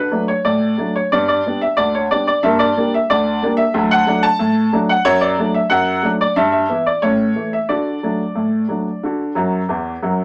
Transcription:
0.00 0.22 B4 medium
0.11 0.30 F#3 soft
0.11 0.30 A3 soft
0.11 0.30 D4 soft
0.28 0.45 C#5 medium
0.45 0.73 A2 medium
0.45 0.92 D5 medium
0.78 0.96 F#3 soft
0.78 0.96 A3 soft
0.78 0.97 D4 soft
0.96 1.12 C#5 medium
1.12 1.40 G2 medium
1.12 1.31 B3 soft
1.12 1.27 D5 medium
1.28 1.59 D5 medium
1.46 1.64 G3 soft
1.46 1.64 B3 soft
1.46 1.64 D4 soft
1.61 1.77 E5 medium
1.77 2.05 D2 medium
1.77 1.93 D5 medium
1.95 2.10 C#5 medium
2.11 2.29 G3 soft
2.11 2.29 B3 soft
2.11 2.30 D4 soft
2.11 2.26 D5 medium
2.27 2.43 D5 medium
2.43 2.71 G2 medium
2.43 2.63 A#3 soft
2.43 2.59 E5 medium
2.59 2.90 D5 medium
2.77 2.95 G3 soft
2.77 2.95 A#3 soft
2.77 2.95 D4 medium
2.94 3.10 E5 medium
3.10 3.37 D2 medium
3.10 3.49 D5 medium
3.43 3.60 G3 soft
3.43 3.60 A#3 soft
3.43 3.61 D4 medium
3.57 3.84 E5 medium
3.74 4.02 D2 medium
3.74 3.94 F#3 medium
3.91 4.22 F#5 medium
4.06 4.25 F#3 medium
4.06 4.25 A3 medium
4.06 4.26 D4 medium
4.23 4.76 A5 medium
4.39 4.67 A2 medium
4.73 4.91 F#3 medium
4.73 4.91 A3 soft
4.73 4.91 D4 medium
4.89 5.06 F#5 medium
5.05 5.33 F#2 medium
5.05 5.22 C#5 loud
5.21 5.48 D5 medium
5.38 5.56 F#3 soft
5.38 5.57 A3 medium
5.38 5.57 D4 medium
5.54 5.71 E5 medium
5.70 5.99 F#2 medium
5.70 6.10 F#5 medium
6.03 6.21 F#3 soft
6.03 6.22 A3 soft
6.03 6.22 D4 soft
6.21 6.37 D5 medium
6.36 6.65 G2 medium
6.36 6.51 E5 medium
6.52 6.84 E5 medium
6.69 6.88 E3 soft
6.69 6.88 B3 soft
6.69 6.88 E4 medium
6.86 7.03 D5 medium
7.02 7.31 A2 medium
7.02 7.22 C#4 soft
7.02 7.50 C#5 medium
7.36 7.54 E3 soft
7.36 7.54 A3 soft
7.36 7.55 E4 soft
7.53 7.69 E5 medium
7.69 7.97 D3 medium
7.69 7.89 F#4 soft
7.69 9.98 D5 medium
8.03 8.21 F#3 soft
8.03 8.21 A3 soft
8.03 8.22 D4 soft
8.35 8.64 A2 soft
8.69 8.87 F#3 soft
8.69 8.87 A3 soft
8.69 8.88 D4 soft
9.03 9.31 D3 medium
9.03 9.23 F#4 soft
9.35 9.61 F#2 medium
9.35 9.60 F#3 medium
9.69 9.94 E2 medium
9.69 9.94 E3 soft
10.02 10.24 F#2 medium
10.02 10.24 F#3 medium

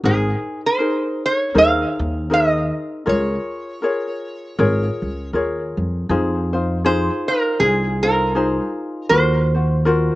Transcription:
0.04 0.32 G#1 medium
0.04 0.79 D#4 medium
0.04 0.80 G#4 medium
0.04 0.60 G#4 medium
0.04 0.78 A#4 medium
0.04 0.80 C5 medium
0.66 1.25 C5 medium
0.79 1.54 D#4 medium
0.79 1.55 G#4 medium
0.79 1.54 A#4 medium
1.26 1.57 C#5 medium
1.55 1.83 D#2 medium
1.55 2.29 D#4 medium
1.55 2.31 G#4 medium
1.55 2.29 A#4 medium
1.55 2.31 C5 medium
1.55 2.33 F5 loud
1.99 2.69 D#2 medium
2.30 3.06 D#4 medium
2.30 3.06 G#4 medium
2.30 3.05 A#4 medium
2.30 3.06 C5 medium
2.30 3.09 D#5 medium
3.06 3.35 C#2 medium
3.06 3.83 F4 medium
3.06 3.83 G#4 medium
3.06 3.81 A#4 medium
3.06 3.82 C#5 medium
3.06 5.30 C#5 medium
3.82 4.58 F4 medium
3.82 4.59 G#4 medium
3.82 4.57 A#4 medium
3.82 4.58 C#5 medium
4.59 4.86 G#1 medium
4.59 5.34 F4 medium
4.59 5.35 G#4 medium
4.59 5.32 A#4 medium
4.59 5.34 C#5 medium
5.02 5.30 C#2 medium
5.33 5.72 D#2 medium
5.33 6.10 F4 medium
5.33 6.10 G#4 medium
5.33 6.08 A#4 medium
5.33 6.09 C#5 medium
5.77 6.05 F2 medium
6.09 7.07 F2 loud
6.09 6.53 D#4 medium
6.09 6.53 F4 medium
6.09 6.52 G#4 medium
6.09 6.52 C5 medium
6.53 6.84 D#4 soft
6.53 6.85 F4 soft
6.53 6.84 C5 medium
6.85 7.28 D#4 medium
6.85 7.28 F4 medium
6.85 7.27 G#4 medium
6.85 7.29 C5 medium
6.85 7.27 C5 medium
7.28 7.60 D#4 soft
7.28 7.60 F4 soft
7.28 7.60 A#4 medium
7.28 7.59 C5 soft
7.60 8.57 C2 loud
7.60 8.04 D#4 soft
7.60 8.03 F4 medium
7.60 8.04 G#4 medium
7.60 8.03 G#4 medium
7.60 8.03 C5 medium
8.03 8.34 D#4 soft
8.03 8.35 F4 soft
8.03 9.06 A#4 medium
8.03 8.35 C5 soft
8.35 9.11 D#4 medium
8.35 9.11 F4 medium
8.35 9.10 G#4 medium
8.35 9.12 C5 medium
9.09 10.08 D#2 loud
9.09 9.54 F4 medium
9.09 9.54 F#4 medium
9.09 9.54 A#4 medium
9.09 10.15 C5 medium
9.09 9.53 C5 medium
9.55 9.85 F4 soft
9.55 9.86 F#4 soft
9.55 9.85 C5 soft
9.85 10.15 F4 medium
9.85 10.15 F#4 medium
9.85 10.15 A#4 medium
9.85 10.15 C5 medium

